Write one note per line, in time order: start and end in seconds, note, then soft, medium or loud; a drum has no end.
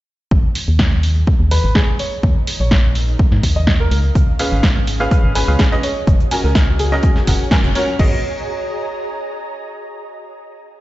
0.31 0.42 G#1 medium
0.31 2.91 G#4 medium
0.31 kick loud
0.55 open hi-hat medium
0.68 1.24 D#2 medium
0.68 2.85 A#5 medium
0.79 kick loud
0.79 snare loud
0.92 2.91 D#5 medium
0.92 snare soft
1.03 open hi-hat medium
1.27 kick loud
1.40 1.59 D#2 loud
1.51 1.73 B4 medium
1.51 open hi-hat loud
1.64 1.73 G#1 loud
1.75 1.97 G#4 medium
1.75 kick loud
1.75 snare loud
1.99 2.13 C#5 medium
1.99 open hi-hat medium
2.23 2.34 D#2 medium
2.23 4.57 D#4 medium
2.23 kick loud
2.43 4.58 A#4 medium
2.47 open hi-hat loud
2.60 3.16 A#1 medium
2.60 2.72 C#5 medium
2.71 kick loud
2.71 snare loud
2.95 4.69 F5 medium
2.95 open hi-hat medium
3.19 kick loud
3.32 3.41 G#2 loud
3.32 snare soft
3.43 3.88 D#2 medium
3.43 kick medium
3.43 open hi-hat loud
3.56 3.63 D#5 medium
3.67 3.76 D#5 medium
3.67 kick loud
3.67 snare loud
3.80 3.96 A#4 medium
3.91 4.11 C#2 loud
3.91 6.70 C#4 medium
3.91 open hi-hat medium
4.15 4.26 C#2 loud
4.15 kick loud
4.15 closed hi-hat medium
4.21 6.70 G#4 medium
4.39 4.62 C#4 medium
4.39 4.62 G#4 medium
4.39 4.62 B4 medium
4.39 4.62 F5 loud
4.39 snare soft
4.39 closed hi-hat medium
4.39 open hi-hat loud
4.52 5.08 G#1 medium
4.63 kick loud
4.63 snare loud
4.63 closed hi-hat medium
4.76 6.70 D#5 medium
4.76 snare soft
4.87 closed hi-hat medium
4.87 open hi-hat medium
5.00 5.10 C#4 medium
5.00 5.10 G#4 medium
5.00 5.10 B4 medium
5.00 5.10 F5 loud
5.00 snare soft
5.11 5.32 C#4 medium
5.11 5.32 G#4 medium
5.11 5.32 B4 medium
5.11 5.32 F5 medium
5.11 kick loud
5.11 closed hi-hat medium
5.24 5.43 G#1 loud
5.35 5.46 C#4 medium
5.35 5.46 G#4 medium
5.35 5.57 B4 medium
5.35 5.46 B4 medium
5.35 5.46 G#5 medium
5.35 closed hi-hat medium
5.35 open hi-hat loud
5.48 5.57 C#2 loud
5.48 5.62 C#4 medium
5.48 5.62 G#4 medium
5.48 5.62 B4 medium
5.48 5.62 F5 loud
5.59 5.81 G#4 medium
5.59 kick loud
5.59 snare loud
5.59 closed hi-hat medium
5.72 5.82 C#4 loud
5.72 5.82 G#4 medium
5.72 5.82 B4 medium
5.72 5.82 D#5 loud
5.72 closed hi-hat soft
5.83 7.99 F#4 medium
5.83 5.97 C#5 medium
5.83 closed hi-hat medium
5.83 open hi-hat medium
6.06 6.18 F#1 loud
6.06 7.99 G#5 medium
6.06 kick loud
6.06 closed hi-hat medium
6.20 closed hi-hat soft
6.31 6.54 C#4 medium
6.31 6.54 F#4 medium
6.31 6.54 A#4 medium
6.31 6.54 G#5 medium
6.31 closed hi-hat medium
6.31 open hi-hat loud
6.44 7.00 C#2 medium
6.44 6.77 A#4 medium
6.44 snare soft
6.55 kick loud
6.55 snare loud
6.55 closed hi-hat medium
6.60 7.99 C#5 medium
6.79 7.47 G#4 medium
6.79 closed hi-hat medium
6.79 open hi-hat medium
6.92 7.06 C#4 loud
6.92 7.06 F#4 medium
6.92 7.06 A#4 medium
6.92 7.06 D#5 loud
6.92 snare soft
7.03 kick loud
7.03 closed hi-hat medium
7.16 snare soft
7.27 7.38 F#1 loud
7.27 7.42 C#4 medium
7.27 7.42 F#4 medium
7.27 7.42 A#4 medium
7.27 7.42 F#5 medium
7.27 kick medium
7.27 closed hi-hat medium
7.27 open hi-hat loud
7.51 7.66 C#4 medium
7.51 7.66 F#4 medium
7.51 7.66 A#4 medium
7.51 7.66 G#5 loud
7.51 kick loud
7.51 snare loud
7.51 closed hi-hat medium
7.64 7.73 F#1 loud
7.64 closed hi-hat soft
7.75 7.90 C#4 medium
7.75 7.90 F#4 medium
7.75 7.90 A#4 medium
7.75 7.90 C#5 loud
7.75 closed hi-hat medium
7.75 open hi-hat loud
7.99 8.22 G#1 medium
7.99 8.18 B3 medium
7.99 8.18 F#4 medium
7.99 8.18 G#4 medium
7.99 9.87 G#4 medium
7.99 8.18 D#5 loud
7.99 kick loud
7.99 crash medium
8.07 9.87 D#5 medium
8.14 9.87 A#5 medium